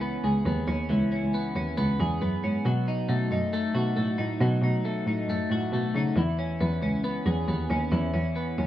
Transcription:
0.00 0.88 E3 medium
0.00 0.46 B3 medium
0.00 0.66 C#4 medium
0.00 0.24 G#4 medium
0.24 0.43 C#2 loud
0.24 1.99 G#4 medium
0.46 0.65 D#2 loud
0.46 1.34 B3 medium
0.68 0.86 D#2 loud
0.68 1.11 C#4 medium
0.90 1.09 C#2 loud
0.90 2.65 E3 medium
1.12 1.55 C#4 medium
1.23 1.51 C#2 medium
1.34 1.77 B3 medium
1.56 1.74 D#2 medium
1.56 2.42 C#4 medium
1.77 1.96 C#2 loud
1.77 2.21 B3 medium
2.00 2.18 E2 loud
2.00 2.70 G#4 medium
2.22 2.40 F#2 loud
2.22 3.08 B3 medium
2.44 2.62 G#2 medium
2.44 2.70 C#4 medium
2.65 3.03 B2 loud
2.65 4.40 F#3 medium
2.88 3.30 D#4 medium
3.09 3.28 B2 loud
3.09 3.52 A3 medium
3.31 3.59 F#2 loud
3.31 4.17 D#4 medium
3.53 3.95 A3 medium
3.75 3.93 B2 loud
3.75 5.50 F#4 medium
3.96 4.16 A2 medium
3.96 4.84 A3 medium
4.18 4.40 A2 loud
4.18 4.62 D#4 medium
4.41 4.59 B2 loud
4.41 6.17 F#3 medium
4.62 5.00 B2 loud
4.62 5.06 D#4 medium
4.85 5.29 A3 medium
5.06 5.25 A2 medium
5.06 5.95 D#4 medium
5.28 5.47 F#2 medium
5.28 5.72 A3 medium
5.50 5.69 A2 loud
5.50 6.21 F#4 medium
5.73 5.91 B2 medium
5.73 6.21 A3 medium
5.94 6.13 C#3 medium
5.94 6.21 D#4 medium
6.16 6.53 E2 loud
6.16 7.91 E3 medium
6.39 6.82 C#4 medium
6.60 6.79 E2 loud
6.60 7.03 B3 medium
6.82 7.10 C#2 loud
6.82 7.70 C#4 medium
7.04 7.47 B3 medium
7.26 7.45 E2 loud
7.26 8.67 G#4 medium
7.48 7.67 D#2 medium
7.48 8.34 B3 medium
7.70 7.89 D#2 loud
7.70 8.13 C#4 medium
7.92 8.11 E2 loud
7.92 8.67 E3 medium
8.14 8.51 E2 medium
8.14 8.58 C#4 medium
8.36 8.67 B3 medium
8.58 8.67 D#2 loud
8.58 8.67 C#4 medium

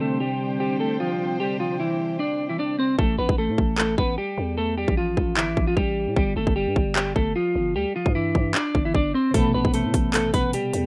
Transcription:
0.00 2.94 C3 medium
0.00 2.93 D3 medium
0.00 2.95 G3 medium
0.00 0.18 A3 medium
0.00 2.96 C4 medium
0.00 2.95 D4 medium
0.00 2.95 G4 medium
0.00 0.17 A4 medium
0.00 2.95 C5 medium
0.00 2.95 G5 medium
0.20 0.58 G3 medium
0.20 0.58 G4 medium
0.60 0.77 G3 medium
0.60 0.77 G4 medium
0.80 0.97 A3 medium
0.80 0.96 A4 medium
1.00 1.38 F3 medium
1.00 1.37 F4 medium
1.40 1.57 G3 medium
1.40 1.56 G4 medium
1.60 1.77 F3 medium
1.60 1.76 F4 medium
1.80 2.17 E3 medium
1.80 2.17 E4 medium
2.19 2.48 D4 medium
2.19 2.48 D5 medium
2.49 2.58 E3 medium
2.49 2.57 E4 medium
2.59 2.75 D4 medium
2.59 2.76 D5 medium
2.79 2.95 C4 loud
2.79 2.96 C5 medium
2.99 3.18 A1 loud
2.99 3.15 A3 medium
2.99 3.15 A4 loud
2.99 kick loud
3.18 3.29 A1 loud
3.18 3.35 B3 medium
3.18 3.35 B4 medium
3.29 3.50 A1 loud
3.29 kick loud
3.38 3.76 A3 medium
3.38 3.76 A4 medium
3.49 3.58 A2 loud
3.58 3.96 A1 loud
3.58 kick loud
3.78 3.95 A3 medium
3.78 3.94 A4 medium
3.78 clap loud
3.98 4.17 A1 loud
3.98 4.15 B3 medium
3.98 4.14 B4 medium
3.98 kick medium
4.18 4.56 G3 medium
4.18 4.55 G4 medium
4.38 4.86 E2 loud
4.58 4.74 A3 medium
4.58 4.74 A4 medium
4.78 4.94 G3 medium
4.78 4.94 G4 medium
4.88 5.16 A1 loud
4.88 kick loud
4.97 5.35 F3 medium
4.97 5.35 F4 medium
5.17 5.38 A1 loud
5.17 kick loud
5.37 5.49 G1 loud
5.37 5.66 E3 medium
5.37 5.66 E4 medium
5.37 clap loud
5.48 5.56 A1 loud
5.57 5.76 A1 loud
5.57 kick medium
5.67 5.76 F3 medium
5.67 5.75 F4 medium
5.77 6.09 A1 loud
5.77 6.14 G3 medium
5.77 6.14 G4 medium
5.77 kick loud
6.07 6.16 A2 loud
6.16 6.36 G1 loud
6.16 6.33 G3 medium
6.16 6.33 G4 medium
6.16 kick loud
6.36 6.46 G1 loud
6.36 6.53 A3 medium
6.36 6.53 A4 medium
6.47 6.68 G1 loud
6.47 kick loud
6.56 6.94 G3 medium
6.56 6.93 G4 medium
6.67 6.76 G2 loud
6.76 7.14 G1 loud
6.76 kick loud
6.96 7.13 G3 medium
6.96 7.12 G4 medium
6.96 clap loud
7.16 7.35 G1 loud
7.16 7.33 A3 medium
7.16 7.32 A4 medium
7.16 kick medium
7.36 7.73 F3 medium
7.36 7.73 F4 medium
7.55 7.77 G1 loud
7.75 7.85 D2 loud
7.75 7.92 G3 medium
7.75 7.92 G4 medium
7.96 8.12 F3 medium
7.96 8.12 F4 medium
8.06 8.34 G2 loud
8.06 kick loud
8.15 8.53 E3 medium
8.15 8.52 E4 medium
8.35 8.54 G2 loud
8.35 kick medium
8.55 8.83 D4 medium
8.55 8.84 D5 medium
8.55 clap loud
8.75 8.94 G1 loud
8.75 kick medium
8.85 8.93 E3 medium
8.85 8.93 E4 medium
8.95 9.14 G1 loud
8.95 9.11 D4 medium
8.95 9.12 D5 medium
8.95 kick loud
9.14 9.31 C4 loud
9.14 9.31 C5 medium
9.31 9.53 A1 loud
9.31 10.86 B2 medium
9.31 10.86 C3 medium
9.31 9.51 A4 loud
9.31 kick loud
9.31 closed hi-hat medium
9.35 10.86 A3 medium
9.35 9.51 A3 medium
9.35 10.86 B3 medium
9.54 9.64 A1 loud
9.54 9.71 B3 medium
9.54 9.71 B4 medium
9.65 9.86 A1 loud
9.65 kick medium
9.74 10.12 A3 medium
9.74 10.11 A4 medium
9.74 closed hi-hat medium
9.85 9.93 A2 loud
9.94 10.32 A1 loud
9.94 kick loud
9.94 closed hi-hat medium
10.14 10.31 A3 medium
10.14 10.30 A4 medium
10.14 clap loud
10.14 closed hi-hat medium
10.34 10.53 A1 loud
10.34 10.51 B3 medium
10.34 10.50 B4 medium
10.34 kick medium
10.34 closed hi-hat medium
10.53 10.86 G3 medium
10.53 10.86 G4 medium
10.53 closed hi-hat medium
10.73 10.86 E2 loud
10.73 closed hi-hat medium

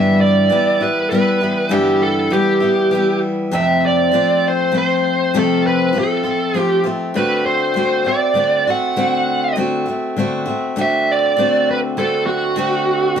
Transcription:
0.00 0.50 G2 medium
0.00 0.50 D3 medium
0.00 0.48 E3 medium
0.00 0.49 G3 medium
0.00 0.51 B3 medium
0.00 0.51 E4 medium
0.00 0.21 E5 medium
0.21 0.83 D5 medium
0.50 0.80 E3 soft
0.50 0.81 G3 medium
0.50 0.80 B3 medium
0.50 0.79 E4 medium
0.81 1.10 E3 soft
0.81 1.10 G3 soft
0.81 1.11 B3 soft
0.81 1.11 E4 soft
0.81 1.09 B4 medium
1.10 1.41 E3 soft
1.10 1.41 G3 medium
1.10 1.40 B3 medium
1.10 1.73 B4 medium
1.14 1.40 E4 medium
1.41 1.70 E3 soft
1.41 1.70 G3 soft
1.41 1.70 B3 soft
1.41 1.70 E4 soft
1.69 2.31 G2 medium
1.69 2.31 D3 medium
1.69 2.29 E3 medium
1.69 2.31 G3 medium
1.69 2.32 B3 medium
1.69 2.32 E4 medium
1.69 2.03 G4 medium
2.02 2.33 A4 medium
2.30 2.61 E3 medium
2.30 2.61 G3 medium
2.30 2.61 B3 medium
2.30 2.59 E4 medium
2.30 3.19 G4 medium
2.60 2.90 E3 soft
2.60 2.91 G3 soft
2.60 2.92 B3 soft
2.60 2.91 E4 soft
2.91 3.52 E3 medium
2.91 3.53 G3 medium
2.91 3.53 B3 medium
2.91 3.54 E4 medium
3.51 4.13 F2 medium
3.51 4.13 C3 medium
3.51 4.10 F3 medium
3.51 4.13 A3 medium
3.51 4.14 C4 medium
3.51 4.14 F4 medium
3.51 3.85 E5 medium
3.86 4.47 D5 medium
4.12 4.70 F3 medium
4.12 4.72 A3 medium
4.12 4.74 C4 medium
4.12 4.73 F4 medium
4.48 4.74 C5 medium
4.72 5.33 F3 medium
4.72 5.35 A3 medium
4.72 5.36 C4 medium
4.72 5.35 F4 medium
4.78 5.38 C5 medium
5.34 5.95 F2 medium
5.34 5.95 C3 medium
5.34 5.92 F3 medium
5.34 5.94 A3 medium
5.34 5.95 C4 medium
5.34 5.95 F4 medium
5.39 5.66 A4 medium
5.67 5.97 B4 medium
5.93 6.24 F3 medium
5.93 6.24 A3 medium
5.93 6.23 C4 medium
5.93 6.22 F4 medium
5.99 6.59 A4 medium
6.23 6.53 F3 soft
6.23 6.54 A3 soft
6.23 6.55 C4 soft
6.23 6.55 F4 soft
6.54 6.85 F3 medium
6.54 6.85 A3 medium
6.54 6.84 C4 medium
6.54 6.82 F4 medium
6.59 6.84 G4 medium
6.84 7.14 F3 soft
6.84 7.14 A3 soft
6.84 7.15 C4 soft
6.84 7.15 F4 medium
7.14 7.74 D3 medium
7.14 7.75 A3 medium
7.14 7.76 C4 medium
7.14 7.76 F#4 medium
7.14 7.46 B4 medium
7.46 8.07 C5 medium
7.74 8.05 D3 soft
7.74 8.06 A3 medium
7.74 8.05 C4 medium
7.74 8.03 F#4 medium
8.04 8.34 A3 soft
8.04 8.35 C4 soft
8.04 8.36 F#4 soft
8.04 8.69 D5 medium
8.34 8.65 D3 soft
8.34 8.66 A3 medium
8.34 8.66 C4 medium
8.34 8.66 F#4 medium
8.67 8.96 A3 soft
8.67 8.96 C4 soft
8.67 8.97 F#4 soft
8.67 9.55 F#5 medium
8.96 9.55 D3 medium
8.96 9.56 A3 medium
8.96 9.57 C4 medium
8.96 9.58 F#4 medium
9.56 9.87 D3 medium
9.56 9.87 A3 medium
9.56 9.87 C4 medium
9.56 9.84 F#4 medium
9.86 10.16 A3 soft
9.86 10.17 C4 soft
9.86 10.17 F#4 soft
10.16 10.47 D3 medium
10.16 10.48 A3 medium
10.16 10.46 C4 medium
10.16 10.44 F#4 medium
10.46 10.76 A3 soft
10.46 10.77 C4 soft
10.46 10.77 F#4 medium
10.76 11.36 D3 medium
10.76 11.37 A3 medium
10.76 11.38 C4 medium
10.76 11.38 F#4 medium
10.81 11.10 E5 medium
11.12 11.70 D5 medium
11.37 11.96 D3 medium
11.37 11.97 A3 medium
11.37 11.98 C4 medium
11.37 11.99 F#4 medium
11.71 11.78 B4 medium
11.97 12.55 D3 medium
11.97 12.56 A3 medium
11.97 12.57 C4 medium
11.97 12.57 F#4 medium
11.97 12.26 A4 medium
12.27 13.20 F#4 medium
12.56 13.15 D3 medium
12.56 13.16 A3 medium
12.56 13.17 C4 medium
12.56 13.18 F#4 medium
13.16 13.20 D3 medium

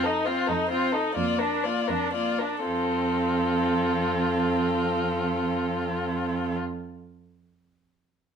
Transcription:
0.00 0.38 F2 medium
0.00 0.25 A4 soft
0.05 0.28 D#4 soft
0.05 0.27 D#4 soft
0.24 0.51 C4 soft
0.24 0.50 F4 soft
0.24 0.48 C5 soft
0.47 1.05 F2 medium
0.47 0.70 D#4 soft
0.47 0.71 D#4 soft
0.47 0.69 A4 soft
0.69 0.95 C4 soft
0.69 0.94 F4 soft
0.69 0.94 C5 soft
0.92 1.15 D#4 soft
0.92 1.16 D#4 soft
0.92 1.15 A4 soft
1.15 1.77 F2 medium
1.15 1.41 A#3 soft
1.15 1.40 F4 soft
1.15 1.40 D5 soft
1.39 1.67 D4 soft
1.39 1.66 D4 soft
1.39 1.65 A#4 soft
1.64 1.90 A#3 soft
1.64 1.92 F4 soft
1.64 1.89 D5 soft
1.88 2.55 F2 soft
1.88 2.13 D4 soft
1.88 2.15 D4 soft
1.88 2.12 A#4 soft
2.13 2.41 A#3 soft
2.13 2.42 F4 soft
2.13 2.40 D5 soft
2.38 2.65 D4 soft
2.38 2.67 D4 soft
2.38 2.64 A#4 soft
2.65 6.57 F2 soft
2.65 6.56 C4 soft
2.65 6.57 F4 soft
2.65 6.56 A4 soft

